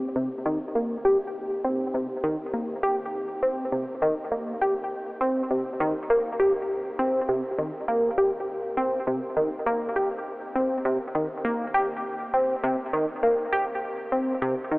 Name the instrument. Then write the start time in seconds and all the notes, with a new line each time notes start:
synth arpeggio sound
0.16 C3
0.46 D#3
0.75 A#3
1.05 G4
1.64 C4
1.94 C3
2.24 D#3
2.53 A#3
2.83 G4
3.43 C4
3.72 C3
4.02 D#3
4.32 A#3
4.61 G4
5.21 C4
5.51 C3
5.80 D#3
6.10 A#3
6.40 G4
6.99 C4
7.29 C3
7.58 D#3
7.88 A#3
8.18 G4
8.77 C4
9.07 C3
9.37 D#3
9.66 A#3
9.96 G4
10.55 C4
10.85 C3
11.15 D#3
11.45 A#3
11.74 G4
12.34 C4
12.63 C3
12.93 D#3
13.23 A#3
13.53 G4
14.12 C4
14.42 C3
14.71 D#3